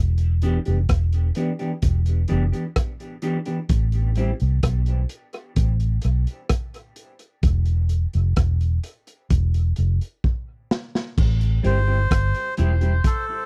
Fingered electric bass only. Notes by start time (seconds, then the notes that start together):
Already playing: E1
0.68 F1
0.90 E1
1.84 E1
2.31 F1
3.70 A1
4.42 C2
4.64 B1
5.57 A1
6.05 B1
7.44 E1
8.15 F1
8.37 E1
9.31 E1
9.78 F1
11.18 A1
11.65 G1
12.11 G1
12.59 E1